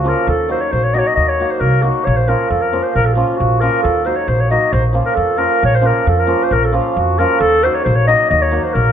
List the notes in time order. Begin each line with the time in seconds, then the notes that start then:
Already playing: C#2
0.04 F3 A#3 C#4 F4
0.08 A#4
0.27 D#2 A4
0.49 F#3 A#3 D#4 F#4 C5
0.61 C#5
0.72 A#1 C5
0.84 C#5
0.94 F#3 A#3 D#4 F#4 D#5
0.99 C#5
1.07 D#5
1.16 D#2 D#5
1.29 C#5
1.40 F#3 A#3 D#4 F#4
1.51 C5
1.60 C2 A#4
1.82 F#3 A#3 D#4 F#4
2.05 A#1 C#5
2.17 C5
2.28 F3 A#3 C#4 F4 A#4
2.50 F2 A4
2.61 A#4
2.73 F3 A#3 C#4 F4
2.83 C5
2.95 A#1 A#4
3.05 A4
3.14 F3 A#3 C#4 F4
3.37 A#1 F#4
3.60 F3 A#3 C#4 F4 A#4
3.83 D#2 A4
4.05 F#3 A#3 D#4 F#4 C5
4.16 C#5
4.28 A#1 C5
4.41 C#5
4.50 F#3 A#3 D#4 F#4 D#5
4.73 A#1 C5
4.93 F3 A#3 C#4 F4
5.05 A#4
5.15 F2 A4
5.37 F3 A#3 C#4 F4 A#4
5.63 A#1 C#5
5.75 C5
5.81 F3 A#3 C#4 F4
5.86 A#4
6.07 F2 A4
6.19 A#4
6.26 F3 A#3 C#4 F4
6.44 C5
6.51 A#1 A#4
6.65 A4
6.72 F3 A#3 C#4 F4
6.96 F2 F#4
7.18 F3 A#3 C#4 F4 A#4
7.40 D#2 A4
7.64 F#3 A#3 D#4 F#4 C5
7.75 C#5
7.84 A#1 C5
7.96 C#5
8.07 F#3 A#3 D#4 F#4 D#5
8.30 D#2 D#5
8.42 C#5
8.51 F#3 A#3 D#4 F#4
8.64 C5
8.74 A#1 A#4